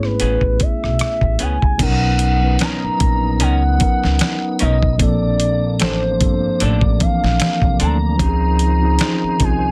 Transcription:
Already playing: G#1 A3 B3 C#4 E4 G#4
0.03 B4, cross-stick
0.20 A1 B3 C#4 G#4, closed hi-hat
0.41 A1, kick
0.60 E5, kick, closed hi-hat
0.84 B1, cross-stick
0.99 cross-stick, closed hi-hat
1.21 A1, kick
1.39 C#2 B3 C#4 G#4 G#5, closed hi-hat
1.62 C2, kick
1.78 B1 F#3 B3 C#4 D#4, kick, closed hi-hat, crash
1.82 A#4 F#5
2.19 closed hi-hat
2.39 F#3 B3 C#4 D#4
2.44 B4
2.59 C#4 D#4 A#4 A#5, snare, closed hi-hat
2.84 muted upright bass stroke
2.98 A#1 F#3 B3 C#4 D#4, kick, closed hi-hat
3.03 A#4
3.40 C#2 C#4 D#4 A#4 F#5, closed hi-hat
3.78 F#3 B3 C#4 D#4, kick, closed hi-hat
3.82 A#4
4.04 C#2, snare
4.19 snare, closed hi-hat
4.59 B1 C#4 D#4 A#4 D#5, closed hi-hat
4.83 kick
4.97 A#1 F3 A#3 C4 D4, kick, closed hi-hat
5.02 A4 D5
5.40 closed hi-hat
5.80 A1 C4 D4 A4 C5, snare, closed hi-hat
6.18 F3 A#3 C4 D4, kick, closed hi-hat
6.22 G1 A4
6.60 A1 C4 D4 A4 D5, closed hi-hat
6.81 kick
6.97 F3 A#3 C4 D4, kick, closed hi-hat
7.02 E3 F5
7.24 A#1, snare
7.40 snare, closed hi-hat
7.62 C2, kick
7.80 D2 C4 D4 A4 A#5, closed hi-hat
8.17 C#2 D#3 F3 C4 C#4 D#4 C5, kick, closed hi-hat
8.22 G4
8.29 G#4
8.59 closed hi-hat
8.80 F3 C4 C#4 D#4
8.85 G#4
8.99 F3 C4 D#4, snare, closed hi-hat
9.24 muted upright bass stroke
9.38 C2 F3 C4 C#4 D#4, kick, closed hi-hat
9.42 F4 G#5

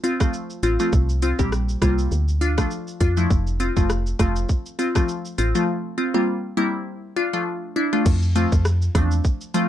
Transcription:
0.04 C4 F4, closed hi-hat, shaker
0.20 F3 A3 C4 F4, kick, cross-stick, shaker
0.34 shaker
0.50 shaker
0.63 A1 C4 F4, closed hi-hat, shaker
0.80 F3 A3 C4 F4, shaker
0.93 C2, kick, shaker
1.09 shaker
1.22 C4 F4, closed hi-hat, shaker
1.39 A#1 G3 A#3 C4 G4, kick, shaker
1.52 cross-stick, shaker
1.69 shaker
1.82 C2 G3 A#3 C4 F4, kick, cross-stick, closed hi-hat, shaker
1.99 shaker
2.12 D2, shaker
2.28 shaker
2.41 D4 F4, closed hi-hat, shaker
2.58 F3 A3 D4 F4, kick, cross-stick, shaker
2.71 shaker
2.88 shaker
3.00 F2 D4 F4, kick, closed hi-hat, shaker
3.17 F3 A3 D4 E4, shaker
3.31 F1, kick, shaker
3.47 shaker
3.60 C4 F4, closed hi-hat, shaker
3.77 F1 F3 A3 C4 F4, kick, shaker
3.90 cross-stick, shaker
4.06 shaker
4.19 F1 F3 A3 C4 F4, kick, cross-stick, closed hi-hat, shaker
4.36 shaker
4.49 kick, shaker
4.66 shaker
4.79 C4 F4, closed hi-hat, shaker
4.95 F3 A3 C4 F4, kick, cross-stick, shaker
5.09 shaker
5.25 shaker
5.38 A1 C4 F4, closed hi-hat, shaker
5.55 F3 A3 C4 F4, shaker
5.98 C4 F4
6.14 G3 A#3 C4 F4
6.57 G3 A#3 C4 E4
7.16 D4 F4
7.33 F3 A3 D4 F4
7.76 D4 E4
7.93 F3 A3 D4 F4
8.06 F2, kick, crash, shaker
8.22 shaker
8.36 F3 A3 C4 F4, closed hi-hat, shaker
8.52 F2, kick, shaker
8.65 cross-stick, shaker
8.82 shaker
8.95 E2 F3 A3 C4 D4, kick, cross-stick, closed hi-hat, shaker
9.11 shaker
9.24 kick, shaker
9.41 shaker
9.54 F3 A3 C4 F4, closed hi-hat, shaker

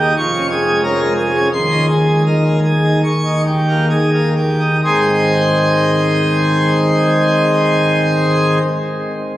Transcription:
Already playing: D#1 D#2 G4
0.01 D#4
0.17 F1 F2 C#6
0.34 C#4
0.50 G#4
0.67 G#3
0.83 C#4 A#4
1.00 G#3
1.18 G#4
1.35 C#4
1.53 D#1 D#2 C6
1.71 D#4
1.88 G#4
2.07 G#3
2.26 D#4 A#4
2.46 G#3
2.65 G#4
2.84 D#4
3.04 D#1 D#2 C#6
3.25 D#4
3.46 G4
3.69 A#3
3.90 D#4 G#4
4.13 A#3
4.37 G4
4.60 D#4
4.84 G#1 G#2 D#3 C4 D#4 G#4 C5

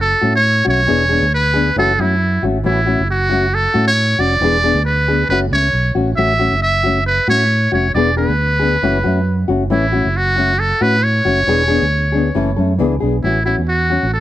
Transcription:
Already playing: F#1
0.01 A4
0.21 A2 A3 C#4 F#4
0.35 C#5
0.65 B1 A3 C#4 F#4 C#5
0.87 E1 E3 B3 D4 G#4
1.09 B3 D4 G#4
1.22 D2
1.34 B4
1.54 B3 D4 G#4
1.76 F#1 E3 A3 C#4 F#4 A4
1.99 F#2 A3 C#4 E4 F#4
2.43 G#1 A3 C#4 F#4
2.63 A1 E3 A3 C#4 E4 F#4
2.86 A3 C#4 F#4
2.99 F#1
3.10 F#4
3.30 A3 C#4 F#4
3.54 A4
3.74 A2 A3 C#4 F#4
3.87 C#5
4.19 F1 C#4 F#4 D5
4.41 E1 E3 B3 D4 G#4
4.64 B3 D4 G#4
4.75 D2
4.85 B4
5.08 B3 D4 G#4
5.29 F#1 A3 C#4 F#4 B4, muted nylon-string guitar stroke
5.51 C#2 A3 C#4 C#5
5.73 B1
5.95 A1 A3 C#4 F#4
6.17 A1 A3 C#4 F#4 E5, muted nylon-string guitar stroke
6.39 A3 C#4 F#4
6.51 F#1
6.62 E5
6.83 A3 C#4 F#4
7.06 B4
7.28 A2 A3 C#4 F#4 C#5
7.72 F1 A3 C#4 F#4 C#5
7.94 E1 E3 B3 D4 G#4 D5
8.17 B3 D4 G#4 B4
8.29 D2
8.59 B3 D4 G#4
8.82 F#1 E3 A3 C#4 F#4
9.04 F#2 A3 C#4 F#4
9.48 F#1 A3 C#4 F#4
9.70 A1 E3 A3 C#4 E4, muted nylon-string guitar stroke
9.92 A3 C#4 F#4
10.05 F#1
10.17 F#4
10.36 A3 C#4 F#4
10.59 A4
10.81 A2 A3 C#4 F#4 B4
11.03 C#5
11.25 F#1 A3 C#4 F#4
11.47 E1 E3 B3 D4 G#4
11.68 B3 D4 G#4
11.82 D2
12.12 B3 D4 G#4
12.35 F#1 E3 A3 C#4 A4
12.56 F#2 A3 C#4 A4
12.78 C#2 E3 B3 D4 G#4
13.00 B1 B3 D4 G#4
13.23 A1 E3 C#4 E4 F#4, muted nylon-string guitar stroke
13.46 A3 C#4 E4 F#4
13.58 E2
13.69 F#4
13.90 C#4 F#4, muted nylon-string guitar stroke
14.03 A1
14.13 A4

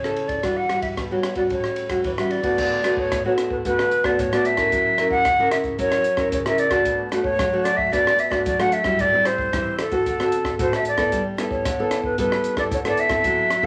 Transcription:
Already playing: C#3 C#5
0.04 C#4 E4 A4, cross-stick
0.16 ride
0.28 D5, kick, ride
0.42 E3 G3 D4 F#4, kick, cross-stick, ride
0.57 F#5
0.69 G3 D4 F#4, cross-stick, ride
0.82 E5, kick, ride
0.97 B2, kick, cross-stick, ride
1.11 G3 D4 F#4 C#5
1.23 cross-stick, ride
1.35 G3 C#4 F#4 D5, kick, ride
1.50 A2 C#5, kick, ride
1.64 cross-stick
1.76 ride
1.89 G3 C#4 F#4, kick, cross-stick, ride
2.04 E3 C#5, kick, ride
2.18 G3 C#4 F#4 E5, cross-stick
2.30 D5, ride
2.43 A3 B3 F#4, kick, ride
2.57 D3, kick, crash
2.83 A3 B3 F#4, cross-stick, closed hi-hat
2.97 C#5, kick
3.11 A2, kick, cross-stick, closed hi-hat
3.25 A3 B3 F#4 C#5
3.38 cross-stick, closed hi-hat
3.50 B4, kick
3.65 D3 A3 B3 F#4 B4, kick, closed hi-hat
3.79 cross-stick
3.91 closed hi-hat
4.03 A3 B3 F#4 D5, kick, cross-stick
4.18 A2 C#5, kick, closed hi-hat
4.32 A3 B3 F#4 D5, cross-stick, closed hi-hat
4.45 E5, closed hi-hat
4.57 C#4 E4 A#4, kick, cross-stick, closed hi-hat
4.72 F#3, kick, closed hi-hat
4.97 C#4 E4 A#4, cross-stick, closed hi-hat
5.11 F#5, kick
5.25 C#3, kick, cross-stick, closed hi-hat
5.39 C#4 E4 A#4
5.51 E5, cross-stick, closed hi-hat
5.64 kick, closed hi-hat
5.78 F#3 C#4 E4 A#4 C#5, kick, closed hi-hat
5.92 cross-stick, closed hi-hat
6.04 closed hi-hat
6.17 C#4 E4 A#4, kick, cross-stick
6.32 C#3 C#5, kick, closed hi-hat
6.46 C#4 E4 A#4 E5, cross-stick, closed hi-hat
6.58 D5, closed hi-hat
6.71 A3 D4 F#4, kick, cross-stick, closed hi-hat
6.85 B2, kick, closed hi-hat
7.11 A3 D4 F#4, cross-stick, closed hi-hat
7.23 C#5, kick
7.38 F#3, kick, cross-stick, closed hi-hat
7.53 A3 D4 F#4
7.64 D5, cross-stick, closed hi-hat
7.77 E5, kick
7.91 B2 A3 D4 F#4 D5, kick, closed hi-hat
8.07 cross-stick
8.19 E5, closed hi-hat
8.30 A3 D4 F#4 D5, kick, cross-stick
8.45 F#3 D5, kick, closed hi-hat
8.59 A3 D4 F#4 F#5, cross-stick, closed hi-hat
8.72 E5, closed hi-hat
8.84 G3 C4 E4, kick, cross-stick, closed hi-hat
8.99 A2 D5, kick, closed hi-hat
9.13 G3 C4 E4
9.25 C5, cross-stick, closed hi-hat
9.38 kick
9.53 E3 G3 C4 E4, kick, cross-stick, closed hi-hat
9.79 A4, cross-stick, closed hi-hat
9.91 C4 F#4 A4, kick, closed hi-hat
10.06 D3, kick, closed hi-hat
10.20 C4 F#4 A4, cross-stick, closed hi-hat
10.32 closed hi-hat
10.45 kick, cross-stick
10.59 A2 C4 F#4 A4 C5, kick, closed hi-hat
10.73 E5, cross-stick, closed hi-hat
10.85 D5, closed hi-hat
10.97 B3 E4 A4, kick, cross-stick, closed hi-hat
11.12 G3, kick, closed hi-hat
11.38 B3 E4 A4, cross-stick, closed hi-hat
11.51 C#5, kick
11.65 D3, kick, cross-stick, closed hi-hat
11.79 B3 E4 A4
11.91 cross-stick, closed hi-hat
12.04 B4, kick
12.18 G3 B3 E4 A4 B4, kick, closed hi-hat
12.32 cross-stick
12.44 closed hi-hat
12.56 B3 E4 A4 D5, kick, cross-stick
12.71 D3 C#5, kick, closed hi-hat
12.85 B3 E4 A4 D5, cross-stick, closed hi-hat
12.97 E5, closed hi-hat
13.09 C4 E4 A4, kick, cross-stick, closed hi-hat
13.24 F#3, kick, closed hi-hat
13.50 cross-stick, closed hi-hat
13.63 C4 E4 A4, kick

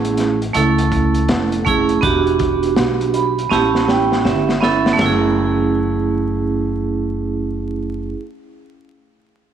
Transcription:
Already playing: A1 A3 C#4 E4 G#4
0.05 closed hi-hat
0.17 snare, closed hi-hat
0.42 closed hi-hat
0.53 C#2 A3 C#4 E4 A4, closed hi-hat
0.78 closed hi-hat
0.92 kick, closed hi-hat
1.14 closed hi-hat
1.28 F1, snare, closed hi-hat
1.52 closed hi-hat
1.65 A3 C#4 E4 G#4, kick, closed hi-hat
1.89 closed hi-hat
2.01 E1 B3 D4 F#4 G4, kick, closed hi-hat
2.27 closed hi-hat
2.39 kick, closed hi-hat
2.63 closed hi-hat
2.76 B1, snare, closed hi-hat
3.01 closed hi-hat
3.14 B5, closed hi-hat
3.38 closed hi-hat
3.50 A1 B3 C#4 E4 G4 A5, snare
3.75 snare
3.88 G5, snare
4.12 snare
4.25 G1 E5, snare
4.49 snare
4.60 B3 C#4 E4 A4 E5, snare
4.86 snare
4.93 A3
4.97 F#1 C#4, snare, ride bell
5.01 E4
5.06 G#4

